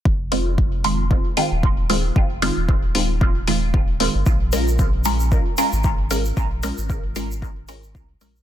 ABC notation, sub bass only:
X:1
M:4/4
L:1/16
Q:"Swing 16ths" 1/4=114
K:Fm
V:1 name="Sub bass" clef=bass
F,,,8- F,,, z2 E,,,4- E,,, | F,,,3 E,,,12 G,,, | B,,,8- B,,, z2 A,,,4- A,,, | B,,,3 A,,,8- A,,, C,, z B,,, z |]